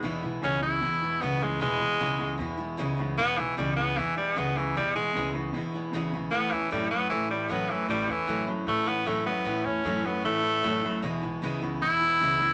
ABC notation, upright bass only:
X:1
M:4/4
L:1/8
Q:1/4=153
K:E
V:1 name="Upright bass" clef=bass
E,,, B,,, C,,2 E,,2 C,,2 | E,,, B,,, C,,2 E,,2 C,,2 | E,,, B,,, C,,2 E,,2 C,,2 | E,,, B,,, C,,2 E,,2 B,,,2 |
A,,, E,, F,,2 A,,2 F,,2 | A,,, E,, F,,2 A,,2 F,,2 | A,,, E,, F,,2 A,,2 F,,2 | E,,, B,,, C,,2 E,,2 C,,2 |]